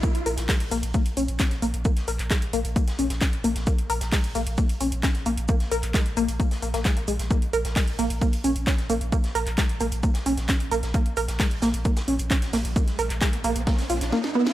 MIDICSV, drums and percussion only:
0, 0, Header, 1, 2, 480
1, 0, Start_track
1, 0, Key_signature, -5, "minor"
1, 0, Tempo, 454545
1, 35, Time_signature, 4, 2, 24, 8
1, 15345, End_track
2, 0, Start_track
2, 0, Title_t, "Drums"
2, 33, Note_on_c, 9, 82, 91
2, 35, Note_on_c, 9, 36, 121
2, 35, Note_on_c, 9, 42, 71
2, 139, Note_off_c, 9, 82, 0
2, 141, Note_off_c, 9, 36, 0
2, 141, Note_off_c, 9, 42, 0
2, 157, Note_on_c, 9, 42, 67
2, 263, Note_off_c, 9, 42, 0
2, 275, Note_on_c, 9, 46, 104
2, 282, Note_on_c, 9, 82, 62
2, 381, Note_off_c, 9, 46, 0
2, 388, Note_off_c, 9, 82, 0
2, 393, Note_on_c, 9, 38, 56
2, 397, Note_on_c, 9, 42, 68
2, 498, Note_off_c, 9, 38, 0
2, 502, Note_off_c, 9, 42, 0
2, 513, Note_on_c, 9, 46, 89
2, 515, Note_on_c, 9, 36, 114
2, 515, Note_on_c, 9, 39, 125
2, 515, Note_on_c, 9, 42, 71
2, 516, Note_on_c, 9, 38, 120
2, 618, Note_off_c, 9, 46, 0
2, 621, Note_off_c, 9, 36, 0
2, 621, Note_off_c, 9, 39, 0
2, 621, Note_off_c, 9, 42, 0
2, 622, Note_off_c, 9, 38, 0
2, 636, Note_on_c, 9, 42, 67
2, 742, Note_off_c, 9, 42, 0
2, 753, Note_on_c, 9, 82, 70
2, 755, Note_on_c, 9, 46, 113
2, 858, Note_off_c, 9, 82, 0
2, 860, Note_off_c, 9, 46, 0
2, 876, Note_on_c, 9, 42, 71
2, 982, Note_off_c, 9, 42, 0
2, 994, Note_on_c, 9, 82, 92
2, 995, Note_on_c, 9, 36, 112
2, 995, Note_on_c, 9, 42, 68
2, 1099, Note_off_c, 9, 82, 0
2, 1100, Note_off_c, 9, 42, 0
2, 1101, Note_off_c, 9, 36, 0
2, 1116, Note_on_c, 9, 42, 72
2, 1221, Note_off_c, 9, 42, 0
2, 1235, Note_on_c, 9, 46, 109
2, 1239, Note_on_c, 9, 82, 66
2, 1340, Note_off_c, 9, 46, 0
2, 1344, Note_off_c, 9, 82, 0
2, 1356, Note_on_c, 9, 42, 68
2, 1462, Note_off_c, 9, 42, 0
2, 1467, Note_on_c, 9, 82, 78
2, 1475, Note_on_c, 9, 36, 115
2, 1475, Note_on_c, 9, 39, 113
2, 1475, Note_on_c, 9, 42, 67
2, 1480, Note_on_c, 9, 38, 119
2, 1572, Note_off_c, 9, 82, 0
2, 1580, Note_off_c, 9, 39, 0
2, 1580, Note_off_c, 9, 42, 0
2, 1581, Note_off_c, 9, 36, 0
2, 1585, Note_off_c, 9, 38, 0
2, 1591, Note_on_c, 9, 38, 35
2, 1596, Note_on_c, 9, 42, 67
2, 1697, Note_off_c, 9, 38, 0
2, 1702, Note_off_c, 9, 42, 0
2, 1714, Note_on_c, 9, 46, 105
2, 1719, Note_on_c, 9, 82, 65
2, 1820, Note_off_c, 9, 46, 0
2, 1825, Note_off_c, 9, 82, 0
2, 1836, Note_on_c, 9, 42, 63
2, 1941, Note_off_c, 9, 42, 0
2, 1951, Note_on_c, 9, 82, 88
2, 1954, Note_on_c, 9, 42, 69
2, 1955, Note_on_c, 9, 36, 126
2, 2057, Note_off_c, 9, 82, 0
2, 2060, Note_off_c, 9, 42, 0
2, 2061, Note_off_c, 9, 36, 0
2, 2075, Note_on_c, 9, 38, 37
2, 2076, Note_on_c, 9, 42, 66
2, 2180, Note_off_c, 9, 38, 0
2, 2182, Note_off_c, 9, 42, 0
2, 2193, Note_on_c, 9, 82, 62
2, 2194, Note_on_c, 9, 46, 107
2, 2298, Note_off_c, 9, 82, 0
2, 2300, Note_off_c, 9, 46, 0
2, 2316, Note_on_c, 9, 39, 38
2, 2316, Note_on_c, 9, 42, 67
2, 2422, Note_off_c, 9, 39, 0
2, 2422, Note_off_c, 9, 42, 0
2, 2434, Note_on_c, 9, 39, 120
2, 2434, Note_on_c, 9, 42, 68
2, 2434, Note_on_c, 9, 82, 90
2, 2435, Note_on_c, 9, 36, 116
2, 2436, Note_on_c, 9, 38, 109
2, 2540, Note_off_c, 9, 39, 0
2, 2540, Note_off_c, 9, 42, 0
2, 2540, Note_off_c, 9, 82, 0
2, 2541, Note_off_c, 9, 36, 0
2, 2541, Note_off_c, 9, 38, 0
2, 2556, Note_on_c, 9, 42, 68
2, 2662, Note_off_c, 9, 42, 0
2, 2674, Note_on_c, 9, 46, 110
2, 2682, Note_on_c, 9, 82, 61
2, 2780, Note_off_c, 9, 46, 0
2, 2788, Note_off_c, 9, 82, 0
2, 2796, Note_on_c, 9, 42, 42
2, 2902, Note_off_c, 9, 42, 0
2, 2914, Note_on_c, 9, 42, 72
2, 2915, Note_on_c, 9, 36, 118
2, 2919, Note_on_c, 9, 82, 83
2, 3020, Note_off_c, 9, 36, 0
2, 3020, Note_off_c, 9, 42, 0
2, 3024, Note_off_c, 9, 82, 0
2, 3036, Note_on_c, 9, 42, 70
2, 3038, Note_on_c, 9, 38, 56
2, 3142, Note_off_c, 9, 42, 0
2, 3144, Note_off_c, 9, 38, 0
2, 3154, Note_on_c, 9, 82, 60
2, 3155, Note_on_c, 9, 46, 113
2, 3260, Note_off_c, 9, 82, 0
2, 3261, Note_off_c, 9, 46, 0
2, 3273, Note_on_c, 9, 38, 57
2, 3276, Note_on_c, 9, 42, 70
2, 3379, Note_off_c, 9, 38, 0
2, 3382, Note_off_c, 9, 42, 0
2, 3392, Note_on_c, 9, 38, 99
2, 3394, Note_on_c, 9, 39, 116
2, 3394, Note_on_c, 9, 42, 65
2, 3395, Note_on_c, 9, 36, 116
2, 3395, Note_on_c, 9, 82, 82
2, 3497, Note_off_c, 9, 38, 0
2, 3500, Note_off_c, 9, 36, 0
2, 3500, Note_off_c, 9, 39, 0
2, 3500, Note_off_c, 9, 42, 0
2, 3500, Note_off_c, 9, 82, 0
2, 3516, Note_on_c, 9, 42, 68
2, 3622, Note_off_c, 9, 42, 0
2, 3634, Note_on_c, 9, 82, 74
2, 3635, Note_on_c, 9, 46, 114
2, 3740, Note_off_c, 9, 46, 0
2, 3740, Note_off_c, 9, 82, 0
2, 3757, Note_on_c, 9, 42, 65
2, 3760, Note_on_c, 9, 38, 48
2, 3862, Note_off_c, 9, 42, 0
2, 3866, Note_off_c, 9, 38, 0
2, 3872, Note_on_c, 9, 82, 89
2, 3875, Note_on_c, 9, 36, 127
2, 3875, Note_on_c, 9, 42, 69
2, 3978, Note_off_c, 9, 82, 0
2, 3980, Note_off_c, 9, 36, 0
2, 3980, Note_off_c, 9, 42, 0
2, 3997, Note_on_c, 9, 42, 65
2, 4102, Note_off_c, 9, 42, 0
2, 4115, Note_on_c, 9, 46, 112
2, 4120, Note_on_c, 9, 82, 66
2, 4221, Note_off_c, 9, 46, 0
2, 4225, Note_off_c, 9, 82, 0
2, 4234, Note_on_c, 9, 38, 56
2, 4236, Note_on_c, 9, 42, 70
2, 4339, Note_off_c, 9, 38, 0
2, 4342, Note_off_c, 9, 42, 0
2, 4355, Note_on_c, 9, 36, 121
2, 4355, Note_on_c, 9, 39, 121
2, 4355, Note_on_c, 9, 42, 70
2, 4356, Note_on_c, 9, 38, 121
2, 4356, Note_on_c, 9, 46, 93
2, 4461, Note_off_c, 9, 36, 0
2, 4461, Note_off_c, 9, 39, 0
2, 4461, Note_off_c, 9, 42, 0
2, 4462, Note_off_c, 9, 38, 0
2, 4462, Note_off_c, 9, 46, 0
2, 4476, Note_on_c, 9, 42, 66
2, 4582, Note_off_c, 9, 42, 0
2, 4595, Note_on_c, 9, 46, 114
2, 4596, Note_on_c, 9, 82, 64
2, 4700, Note_off_c, 9, 46, 0
2, 4701, Note_off_c, 9, 82, 0
2, 4716, Note_on_c, 9, 42, 71
2, 4822, Note_off_c, 9, 42, 0
2, 4832, Note_on_c, 9, 82, 82
2, 4835, Note_on_c, 9, 36, 117
2, 4835, Note_on_c, 9, 42, 70
2, 4938, Note_off_c, 9, 82, 0
2, 4941, Note_off_c, 9, 36, 0
2, 4941, Note_off_c, 9, 42, 0
2, 4956, Note_on_c, 9, 42, 67
2, 4959, Note_off_c, 9, 42, 0
2, 4959, Note_on_c, 9, 42, 42
2, 5064, Note_off_c, 9, 42, 0
2, 5074, Note_on_c, 9, 46, 110
2, 5074, Note_on_c, 9, 82, 66
2, 5179, Note_off_c, 9, 82, 0
2, 5180, Note_off_c, 9, 46, 0
2, 5196, Note_on_c, 9, 42, 66
2, 5301, Note_off_c, 9, 42, 0
2, 5314, Note_on_c, 9, 39, 110
2, 5314, Note_on_c, 9, 42, 66
2, 5315, Note_on_c, 9, 36, 121
2, 5320, Note_on_c, 9, 82, 80
2, 5322, Note_on_c, 9, 38, 123
2, 5420, Note_off_c, 9, 39, 0
2, 5420, Note_off_c, 9, 42, 0
2, 5421, Note_off_c, 9, 36, 0
2, 5425, Note_off_c, 9, 82, 0
2, 5427, Note_off_c, 9, 38, 0
2, 5432, Note_on_c, 9, 38, 34
2, 5436, Note_on_c, 9, 42, 67
2, 5538, Note_off_c, 9, 38, 0
2, 5541, Note_off_c, 9, 42, 0
2, 5553, Note_on_c, 9, 82, 67
2, 5554, Note_on_c, 9, 46, 111
2, 5658, Note_off_c, 9, 82, 0
2, 5660, Note_off_c, 9, 46, 0
2, 5676, Note_on_c, 9, 42, 67
2, 5781, Note_off_c, 9, 42, 0
2, 5787, Note_on_c, 9, 82, 88
2, 5794, Note_on_c, 9, 42, 65
2, 5795, Note_on_c, 9, 36, 127
2, 5893, Note_off_c, 9, 82, 0
2, 5900, Note_off_c, 9, 42, 0
2, 5901, Note_off_c, 9, 36, 0
2, 5912, Note_on_c, 9, 38, 38
2, 5916, Note_on_c, 9, 42, 63
2, 6017, Note_off_c, 9, 38, 0
2, 6021, Note_off_c, 9, 42, 0
2, 6035, Note_on_c, 9, 46, 108
2, 6039, Note_on_c, 9, 82, 66
2, 6140, Note_off_c, 9, 46, 0
2, 6144, Note_off_c, 9, 82, 0
2, 6156, Note_on_c, 9, 39, 34
2, 6156, Note_on_c, 9, 42, 66
2, 6262, Note_off_c, 9, 39, 0
2, 6262, Note_off_c, 9, 42, 0
2, 6275, Note_on_c, 9, 36, 122
2, 6275, Note_on_c, 9, 38, 117
2, 6275, Note_on_c, 9, 39, 118
2, 6275, Note_on_c, 9, 42, 66
2, 6279, Note_on_c, 9, 82, 98
2, 6380, Note_off_c, 9, 36, 0
2, 6380, Note_off_c, 9, 38, 0
2, 6381, Note_off_c, 9, 39, 0
2, 6381, Note_off_c, 9, 42, 0
2, 6385, Note_off_c, 9, 82, 0
2, 6397, Note_on_c, 9, 42, 63
2, 6502, Note_off_c, 9, 42, 0
2, 6513, Note_on_c, 9, 82, 66
2, 6515, Note_on_c, 9, 46, 112
2, 6618, Note_off_c, 9, 82, 0
2, 6621, Note_off_c, 9, 46, 0
2, 6637, Note_on_c, 9, 42, 67
2, 6638, Note_off_c, 9, 42, 0
2, 6638, Note_on_c, 9, 42, 46
2, 6744, Note_off_c, 9, 42, 0
2, 6755, Note_on_c, 9, 36, 111
2, 6755, Note_on_c, 9, 42, 68
2, 6758, Note_on_c, 9, 82, 88
2, 6860, Note_off_c, 9, 36, 0
2, 6861, Note_off_c, 9, 42, 0
2, 6864, Note_off_c, 9, 82, 0
2, 6876, Note_on_c, 9, 46, 62
2, 6878, Note_on_c, 9, 38, 59
2, 6982, Note_off_c, 9, 46, 0
2, 6983, Note_off_c, 9, 38, 0
2, 6995, Note_on_c, 9, 46, 109
2, 7001, Note_on_c, 9, 82, 64
2, 7101, Note_off_c, 9, 46, 0
2, 7106, Note_off_c, 9, 82, 0
2, 7114, Note_on_c, 9, 38, 57
2, 7117, Note_on_c, 9, 42, 66
2, 7220, Note_off_c, 9, 38, 0
2, 7223, Note_off_c, 9, 42, 0
2, 7232, Note_on_c, 9, 38, 116
2, 7232, Note_on_c, 9, 82, 87
2, 7235, Note_on_c, 9, 36, 119
2, 7235, Note_on_c, 9, 39, 107
2, 7235, Note_on_c, 9, 42, 61
2, 7337, Note_off_c, 9, 38, 0
2, 7338, Note_off_c, 9, 82, 0
2, 7340, Note_off_c, 9, 36, 0
2, 7341, Note_off_c, 9, 39, 0
2, 7341, Note_off_c, 9, 42, 0
2, 7357, Note_on_c, 9, 42, 63
2, 7462, Note_off_c, 9, 42, 0
2, 7470, Note_on_c, 9, 82, 71
2, 7476, Note_on_c, 9, 46, 111
2, 7576, Note_off_c, 9, 82, 0
2, 7581, Note_off_c, 9, 46, 0
2, 7597, Note_on_c, 9, 42, 64
2, 7598, Note_on_c, 9, 38, 50
2, 7703, Note_off_c, 9, 42, 0
2, 7704, Note_off_c, 9, 38, 0
2, 7715, Note_on_c, 9, 36, 126
2, 7715, Note_on_c, 9, 42, 66
2, 7715, Note_on_c, 9, 82, 88
2, 7820, Note_off_c, 9, 36, 0
2, 7821, Note_off_c, 9, 42, 0
2, 7821, Note_off_c, 9, 82, 0
2, 7837, Note_on_c, 9, 42, 62
2, 7942, Note_off_c, 9, 42, 0
2, 7955, Note_on_c, 9, 46, 101
2, 7958, Note_on_c, 9, 82, 64
2, 8061, Note_off_c, 9, 46, 0
2, 8064, Note_off_c, 9, 82, 0
2, 8077, Note_on_c, 9, 42, 63
2, 8078, Note_on_c, 9, 38, 58
2, 8182, Note_off_c, 9, 42, 0
2, 8184, Note_off_c, 9, 38, 0
2, 8195, Note_on_c, 9, 36, 120
2, 8195, Note_on_c, 9, 39, 116
2, 8195, Note_on_c, 9, 42, 64
2, 8196, Note_on_c, 9, 46, 86
2, 8200, Note_on_c, 9, 38, 116
2, 8300, Note_off_c, 9, 36, 0
2, 8301, Note_off_c, 9, 39, 0
2, 8301, Note_off_c, 9, 42, 0
2, 8302, Note_off_c, 9, 46, 0
2, 8306, Note_off_c, 9, 38, 0
2, 8317, Note_on_c, 9, 42, 62
2, 8422, Note_off_c, 9, 42, 0
2, 8434, Note_on_c, 9, 82, 66
2, 8435, Note_on_c, 9, 46, 112
2, 8540, Note_off_c, 9, 82, 0
2, 8541, Note_off_c, 9, 46, 0
2, 8556, Note_on_c, 9, 42, 67
2, 8662, Note_off_c, 9, 42, 0
2, 8675, Note_on_c, 9, 36, 112
2, 8675, Note_on_c, 9, 42, 64
2, 8680, Note_on_c, 9, 82, 93
2, 8780, Note_off_c, 9, 36, 0
2, 8781, Note_off_c, 9, 42, 0
2, 8785, Note_off_c, 9, 82, 0
2, 8793, Note_on_c, 9, 42, 44
2, 8796, Note_off_c, 9, 42, 0
2, 8796, Note_on_c, 9, 42, 64
2, 8902, Note_off_c, 9, 42, 0
2, 8914, Note_on_c, 9, 82, 65
2, 8915, Note_on_c, 9, 46, 112
2, 9019, Note_off_c, 9, 82, 0
2, 9021, Note_off_c, 9, 46, 0
2, 9037, Note_on_c, 9, 42, 63
2, 9142, Note_off_c, 9, 42, 0
2, 9155, Note_on_c, 9, 36, 123
2, 9155, Note_on_c, 9, 39, 109
2, 9155, Note_on_c, 9, 42, 59
2, 9160, Note_on_c, 9, 38, 104
2, 9160, Note_on_c, 9, 82, 83
2, 9260, Note_off_c, 9, 36, 0
2, 9261, Note_off_c, 9, 39, 0
2, 9261, Note_off_c, 9, 42, 0
2, 9265, Note_off_c, 9, 38, 0
2, 9265, Note_off_c, 9, 82, 0
2, 9276, Note_on_c, 9, 42, 64
2, 9277, Note_on_c, 9, 38, 37
2, 9382, Note_off_c, 9, 38, 0
2, 9382, Note_off_c, 9, 42, 0
2, 9394, Note_on_c, 9, 46, 106
2, 9396, Note_on_c, 9, 82, 67
2, 9500, Note_off_c, 9, 46, 0
2, 9501, Note_off_c, 9, 82, 0
2, 9516, Note_on_c, 9, 42, 61
2, 9621, Note_off_c, 9, 42, 0
2, 9634, Note_on_c, 9, 42, 66
2, 9635, Note_on_c, 9, 36, 115
2, 9637, Note_on_c, 9, 82, 91
2, 9740, Note_off_c, 9, 36, 0
2, 9740, Note_off_c, 9, 42, 0
2, 9743, Note_off_c, 9, 82, 0
2, 9756, Note_on_c, 9, 38, 39
2, 9756, Note_on_c, 9, 42, 62
2, 9861, Note_off_c, 9, 38, 0
2, 9861, Note_off_c, 9, 42, 0
2, 9875, Note_on_c, 9, 46, 99
2, 9880, Note_on_c, 9, 82, 65
2, 9981, Note_off_c, 9, 46, 0
2, 9986, Note_off_c, 9, 82, 0
2, 9996, Note_on_c, 9, 39, 37
2, 9996, Note_on_c, 9, 42, 62
2, 10102, Note_off_c, 9, 39, 0
2, 10102, Note_off_c, 9, 42, 0
2, 10111, Note_on_c, 9, 82, 92
2, 10115, Note_on_c, 9, 36, 116
2, 10115, Note_on_c, 9, 39, 123
2, 10115, Note_on_c, 9, 42, 63
2, 10119, Note_on_c, 9, 38, 117
2, 10217, Note_off_c, 9, 82, 0
2, 10220, Note_off_c, 9, 36, 0
2, 10220, Note_off_c, 9, 39, 0
2, 10220, Note_off_c, 9, 42, 0
2, 10224, Note_off_c, 9, 38, 0
2, 10237, Note_on_c, 9, 42, 63
2, 10342, Note_off_c, 9, 42, 0
2, 10350, Note_on_c, 9, 82, 64
2, 10355, Note_on_c, 9, 46, 107
2, 10455, Note_off_c, 9, 82, 0
2, 10461, Note_off_c, 9, 46, 0
2, 10471, Note_on_c, 9, 42, 46
2, 10476, Note_off_c, 9, 42, 0
2, 10476, Note_on_c, 9, 42, 65
2, 10582, Note_off_c, 9, 42, 0
2, 10592, Note_on_c, 9, 82, 89
2, 10595, Note_on_c, 9, 36, 114
2, 10595, Note_on_c, 9, 42, 64
2, 10698, Note_off_c, 9, 82, 0
2, 10700, Note_off_c, 9, 36, 0
2, 10700, Note_off_c, 9, 42, 0
2, 10709, Note_on_c, 9, 38, 60
2, 10716, Note_on_c, 9, 42, 64
2, 10815, Note_off_c, 9, 38, 0
2, 10822, Note_off_c, 9, 42, 0
2, 10835, Note_on_c, 9, 46, 103
2, 10835, Note_on_c, 9, 82, 66
2, 10940, Note_off_c, 9, 46, 0
2, 10941, Note_off_c, 9, 82, 0
2, 10956, Note_on_c, 9, 42, 63
2, 10958, Note_on_c, 9, 38, 50
2, 11062, Note_off_c, 9, 42, 0
2, 11063, Note_off_c, 9, 38, 0
2, 11070, Note_on_c, 9, 38, 116
2, 11073, Note_on_c, 9, 82, 83
2, 11075, Note_on_c, 9, 36, 112
2, 11075, Note_on_c, 9, 39, 116
2, 11075, Note_on_c, 9, 42, 59
2, 11176, Note_off_c, 9, 38, 0
2, 11179, Note_off_c, 9, 82, 0
2, 11180, Note_off_c, 9, 36, 0
2, 11181, Note_off_c, 9, 39, 0
2, 11181, Note_off_c, 9, 42, 0
2, 11196, Note_on_c, 9, 42, 63
2, 11302, Note_off_c, 9, 42, 0
2, 11315, Note_on_c, 9, 46, 104
2, 11320, Note_on_c, 9, 82, 63
2, 11420, Note_off_c, 9, 46, 0
2, 11425, Note_off_c, 9, 82, 0
2, 11436, Note_on_c, 9, 42, 61
2, 11440, Note_on_c, 9, 38, 54
2, 11542, Note_off_c, 9, 42, 0
2, 11545, Note_off_c, 9, 38, 0
2, 11554, Note_on_c, 9, 82, 94
2, 11555, Note_on_c, 9, 36, 119
2, 11555, Note_on_c, 9, 42, 67
2, 11659, Note_off_c, 9, 82, 0
2, 11660, Note_off_c, 9, 36, 0
2, 11660, Note_off_c, 9, 42, 0
2, 11677, Note_on_c, 9, 42, 64
2, 11782, Note_off_c, 9, 42, 0
2, 11790, Note_on_c, 9, 82, 63
2, 11795, Note_on_c, 9, 46, 96
2, 11896, Note_off_c, 9, 82, 0
2, 11901, Note_off_c, 9, 46, 0
2, 11913, Note_on_c, 9, 38, 57
2, 11917, Note_on_c, 9, 42, 65
2, 12019, Note_off_c, 9, 38, 0
2, 12022, Note_off_c, 9, 42, 0
2, 12035, Note_on_c, 9, 36, 114
2, 12035, Note_on_c, 9, 39, 121
2, 12035, Note_on_c, 9, 42, 65
2, 12038, Note_on_c, 9, 38, 109
2, 12039, Note_on_c, 9, 46, 75
2, 12140, Note_off_c, 9, 39, 0
2, 12140, Note_off_c, 9, 42, 0
2, 12141, Note_off_c, 9, 36, 0
2, 12143, Note_off_c, 9, 38, 0
2, 12144, Note_off_c, 9, 46, 0
2, 12156, Note_on_c, 9, 42, 63
2, 12262, Note_off_c, 9, 42, 0
2, 12270, Note_on_c, 9, 38, 109
2, 12275, Note_on_c, 9, 46, 105
2, 12277, Note_on_c, 9, 82, 74
2, 12375, Note_off_c, 9, 38, 0
2, 12380, Note_off_c, 9, 46, 0
2, 12383, Note_off_c, 9, 82, 0
2, 12396, Note_on_c, 9, 42, 65
2, 12502, Note_off_c, 9, 42, 0
2, 12512, Note_on_c, 9, 82, 61
2, 12515, Note_on_c, 9, 36, 112
2, 12515, Note_on_c, 9, 42, 64
2, 12617, Note_off_c, 9, 82, 0
2, 12620, Note_off_c, 9, 42, 0
2, 12621, Note_off_c, 9, 36, 0
2, 12637, Note_on_c, 9, 38, 108
2, 12637, Note_on_c, 9, 42, 65
2, 12637, Note_on_c, 9, 82, 84
2, 12742, Note_off_c, 9, 38, 0
2, 12742, Note_off_c, 9, 42, 0
2, 12742, Note_off_c, 9, 82, 0
2, 12755, Note_on_c, 9, 46, 103
2, 12860, Note_off_c, 9, 46, 0
2, 12869, Note_on_c, 9, 82, 56
2, 12877, Note_on_c, 9, 42, 69
2, 12975, Note_off_c, 9, 82, 0
2, 12982, Note_off_c, 9, 42, 0
2, 12992, Note_on_c, 9, 82, 65
2, 12995, Note_on_c, 9, 36, 114
2, 12996, Note_on_c, 9, 39, 120
2, 12996, Note_on_c, 9, 42, 64
2, 13097, Note_off_c, 9, 82, 0
2, 13101, Note_off_c, 9, 36, 0
2, 13101, Note_off_c, 9, 39, 0
2, 13101, Note_off_c, 9, 42, 0
2, 13117, Note_on_c, 9, 42, 66
2, 13122, Note_on_c, 9, 38, 42
2, 13222, Note_off_c, 9, 42, 0
2, 13228, Note_off_c, 9, 38, 0
2, 13229, Note_on_c, 9, 46, 70
2, 13235, Note_off_c, 9, 46, 0
2, 13235, Note_on_c, 9, 38, 110
2, 13235, Note_on_c, 9, 46, 100
2, 13341, Note_off_c, 9, 38, 0
2, 13341, Note_off_c, 9, 46, 0
2, 13357, Note_on_c, 9, 42, 62
2, 13463, Note_off_c, 9, 42, 0
2, 13475, Note_on_c, 9, 36, 117
2, 13475, Note_on_c, 9, 42, 66
2, 13476, Note_on_c, 9, 82, 96
2, 13581, Note_off_c, 9, 36, 0
2, 13581, Note_off_c, 9, 42, 0
2, 13582, Note_off_c, 9, 82, 0
2, 13597, Note_on_c, 9, 38, 36
2, 13597, Note_on_c, 9, 42, 62
2, 13702, Note_off_c, 9, 38, 0
2, 13702, Note_off_c, 9, 42, 0
2, 13713, Note_on_c, 9, 82, 67
2, 13715, Note_on_c, 9, 46, 102
2, 13819, Note_off_c, 9, 82, 0
2, 13821, Note_off_c, 9, 46, 0
2, 13836, Note_on_c, 9, 39, 39
2, 13836, Note_on_c, 9, 42, 68
2, 13942, Note_off_c, 9, 39, 0
2, 13942, Note_off_c, 9, 42, 0
2, 13952, Note_on_c, 9, 38, 117
2, 13955, Note_on_c, 9, 36, 112
2, 13955, Note_on_c, 9, 39, 127
2, 13955, Note_on_c, 9, 42, 69
2, 13955, Note_on_c, 9, 82, 91
2, 14057, Note_off_c, 9, 38, 0
2, 14060, Note_off_c, 9, 82, 0
2, 14061, Note_off_c, 9, 36, 0
2, 14061, Note_off_c, 9, 39, 0
2, 14061, Note_off_c, 9, 42, 0
2, 14076, Note_on_c, 9, 42, 66
2, 14182, Note_off_c, 9, 42, 0
2, 14193, Note_on_c, 9, 82, 72
2, 14195, Note_on_c, 9, 46, 107
2, 14299, Note_off_c, 9, 82, 0
2, 14300, Note_off_c, 9, 46, 0
2, 14315, Note_on_c, 9, 42, 42
2, 14316, Note_off_c, 9, 42, 0
2, 14316, Note_on_c, 9, 42, 73
2, 14422, Note_off_c, 9, 42, 0
2, 14433, Note_on_c, 9, 46, 74
2, 14435, Note_on_c, 9, 36, 105
2, 14435, Note_on_c, 9, 42, 68
2, 14436, Note_on_c, 9, 38, 105
2, 14539, Note_off_c, 9, 46, 0
2, 14540, Note_off_c, 9, 42, 0
2, 14541, Note_off_c, 9, 36, 0
2, 14542, Note_off_c, 9, 38, 0
2, 14556, Note_on_c, 9, 46, 61
2, 14563, Note_on_c, 9, 38, 62
2, 14662, Note_off_c, 9, 46, 0
2, 14669, Note_off_c, 9, 38, 0
2, 14673, Note_on_c, 9, 82, 63
2, 14675, Note_on_c, 9, 46, 105
2, 14778, Note_off_c, 9, 82, 0
2, 14781, Note_off_c, 9, 46, 0
2, 14796, Note_on_c, 9, 42, 68
2, 14800, Note_on_c, 9, 38, 53
2, 14902, Note_off_c, 9, 42, 0
2, 14905, Note_off_c, 9, 38, 0
2, 14915, Note_on_c, 9, 38, 58
2, 15021, Note_off_c, 9, 38, 0
2, 15036, Note_on_c, 9, 38, 64
2, 15142, Note_off_c, 9, 38, 0
2, 15276, Note_on_c, 9, 38, 81
2, 15345, Note_off_c, 9, 38, 0
2, 15345, End_track
0, 0, End_of_file